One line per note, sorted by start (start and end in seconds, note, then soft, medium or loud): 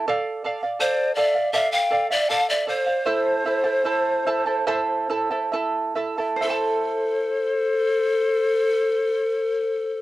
0.08 0.43 A4 medium
0.08 0.43 D5 medium
0.08 0.44 F5 medium
0.44 0.62 A4 medium
0.44 0.62 D5 medium
0.44 0.61 F5 medium
0.63 0.79 D5 soft
0.63 0.79 F5 soft
0.79 1.16 A4 medium
0.79 1.14 C5 medium
0.79 1.14 D5 medium
0.79 1.16 D5 medium
0.79 1.17 F5 medium
1.15 1.35 A4 medium
1.15 1.50 D5 medium
1.15 1.35 D5 medium
1.15 1.21 F5 medium
1.15 1.33 F5 medium
1.20 1.50 E5 medium
1.35 1.53 D5 soft
1.35 1.53 F5 soft
1.53 1.89 A4 medium
1.53 1.90 D5 medium
1.53 1.71 E5 medium
1.53 1.71 F5 medium
1.53 1.91 F5 medium
1.72 2.07 F5 medium
1.72 2.07 G5 medium
1.90 2.09 A4 medium
1.90 2.10 D5 medium
1.90 2.09 F5 medium
2.09 2.31 D5 medium
2.09 2.29 D5 soft
2.09 2.30 E5 medium
2.09 2.29 F5 soft
2.29 2.66 A4 medium
2.29 2.66 D5 medium
2.29 2.48 F5 medium
2.29 2.67 F5 medium
2.29 2.48 A5 medium
2.48 2.67 D5 medium
2.48 2.66 E5 medium
2.67 2.86 A4 medium
2.67 5.49 C5 medium
2.67 5.50 C5 medium
2.67 2.87 D5 medium
2.67 2.85 F5 medium
2.86 3.05 D5 soft
2.86 3.06 F5 soft
3.06 3.45 E4 medium
3.06 3.46 A4 medium
3.06 3.45 C5 medium
3.06 3.44 E5 medium
3.06 3.46 A5 medium
3.46 3.64 E4 medium
3.46 3.64 A4 soft
3.46 3.64 E5 soft
3.46 3.63 A5 medium
3.64 3.84 E4 soft
3.64 3.85 A4 soft
3.64 3.84 A5 medium
3.85 4.25 E4 medium
3.85 4.26 A4 medium
3.85 4.26 E5 medium
3.85 4.26 A5 medium
4.27 4.46 E4 medium
4.27 4.46 A4 medium
4.27 4.46 E5 medium
4.27 4.45 A5 medium
4.46 4.66 E4 soft
4.46 4.66 A4 medium
4.46 4.67 A5 soft
4.67 5.09 E4 medium
4.67 5.09 A4 medium
4.67 5.09 C5 medium
4.67 5.08 E5 medium
4.67 5.09 A5 medium
5.10 5.30 E4 medium
5.10 5.30 A4 medium
5.10 5.30 E5 medium
5.10 5.29 A5 medium
5.31 5.52 E4 soft
5.31 5.52 A4 soft
5.31 5.51 A5 medium
5.52 5.95 E4 medium
5.52 5.95 A4 medium
5.52 5.94 E5 soft
5.52 5.96 A5 medium
5.95 6.18 E4 medium
5.95 6.17 A4 medium
5.95 6.17 E5 medium
5.95 6.17 A5 medium
6.18 6.42 E4 soft
6.18 6.41 A4 soft
6.18 6.40 A5 soft
6.36 10.02 C5 medium
6.41 10.02 E4 medium
6.41 10.02 A4 medium
6.41 10.02 C5 medium
6.41 10.02 E5 medium
6.47 10.02 A4 medium
6.47 10.02 A5 medium